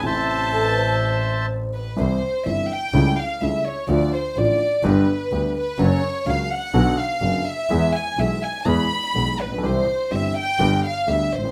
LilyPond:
<<
  \new Staff \with { instrumentName = "Bandoneon" } { \time 4/4 \key a \minor \tempo 4 = 125 <c'' e'' a''>2. r4 | r1 | r1 | r1 |
r1 | r1 | }
  \new Staff \with { instrumentName = "Violin section" } { \time 4/4 \key a \minor a''2. r8 b'8 | c''4 e''8 g''4 f''8 e''8 cis''8 | d''8 c''8 d''4 b'4. b'8 | cis''4 f''8 fis''4 f''4 e''8~ |
e''8 gis''8 e''8 gis''8 b''4. b'8 | c''4 e''8 g''4 f''8 e''8 c''8 | }
  \new Staff \with { instrumentName = "Vibraphone" } { \time 4/4 \key a \minor r4 a'16 b'16 c''2 r8 | r1 | r1 | r1 |
r1 | r1 | }
  \new Staff \with { instrumentName = "Grand piano" } { \clef bass \time 4/4 \key a \minor <a,, a, c e a e'>1 | <c, c e g e'>8 r8 <g,, g, c e g e'>8 r8 <cis, cis g a e'>8 r8 <cis, cis g a e'>8 r8 | <d, d f a f'>8 r8 <a,, a, d f a f'>8 r8 <g,, g, d g b g'>8 r8 <d, d g b g'>8 r8 | <fis, cis fis ais fis'>8 r8 <cis, cis fis ais fis'>8 r8 <b,, b, d fis b fis'>8 r8 <fis,, fis, d fis b fis'>8 r8 |
<e, e gis b gis'>8 r8 <b,, b, e gis b gis'>8 r8 <e, e gis b gis'>8 r8 <b,, b, e gis b gis'>8 r32 a,,32 bes,,32 b,,32 | <c, c e g c' g'>8 r8 <g,, g, e g c' g'>8 r8 <g,, g, d g b g'>8 r8 <d, d g b g'>8 r32 gis,,32 a,,32 r32 | }
  \new Staff \with { instrumentName = "Double bass" } { \clef bass \time 4/4 \key a \minor a,,1 | c,8 r8 g,,8 r8 cis,8 r8 cis,8 r8 | d,8 r8 a,,8 r8 g,,8 r8 d,8 r8 | fis,,8 r8 cis,8 r8 b,,8 r8 fis,,8 r8 |
e,8 r8 b,,8 r8 e,8 r8 b,,8 bes,,8 | c,8 r8 g,,8 r8 g,,8 r8 d,8 a,,8 | }
>>